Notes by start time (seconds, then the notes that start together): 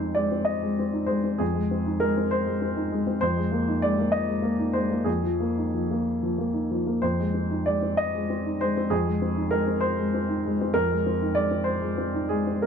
Already playing: F2 G#3 C4 C5
0.00 D#4
0.15 G#3 D5
0.32 C4
0.45 D#5
0.62 G#3
0.79 C4
0.93 D#4
1.06 G#3 C5
1.23 C4
1.38 F2 G#4
1.55 G#3
1.71 C4
1.86 D#4
2.00 G#3 A#4
2.17 C4
2.31 C5
2.46 G#3
2.62 C4
2.77 D#4
2.92 G#3
3.07 C4
3.21 F2 C5
3.37 G#3
3.52 A#3
3.68 D#4
3.82 G#3 D5
3.98 A#3
4.12 D#5
4.28 G#3
4.42 A#3
4.59 D#4
4.73 G#3 C5
4.91 A#3
5.04 F2 G#4
5.23 F3
5.40 A#3
5.58 D#4
5.74 F3
5.91 A#3
6.23 F3
6.38 A#3
6.53 D#4
6.71 F3
6.86 A#3
7.02 F2 C5
7.19 G#3
7.34 C4
7.51 D#4
7.66 G#3 D5
7.82 C4
7.97 D#5
8.15 G#3
8.30 C4
8.46 D#4
8.61 G#3 C5
8.77 C4
8.90 F2 G#4
9.07 G#3
9.22 C4
9.37 D#4
9.51 G#3 A#4
9.67 C4
9.81 C5
9.99 G#3
10.14 C4
10.29 D#4
10.45 G#3
10.61 C4
10.74 F2 A#4
10.91 G#3
11.06 C4
11.22 D#4
11.35 G#3 D5
11.51 C4
11.64 C5
11.82 G#3
11.98 C4
12.14 D#4
12.29 G#3 G#4
12.47 C4
12.62 A#4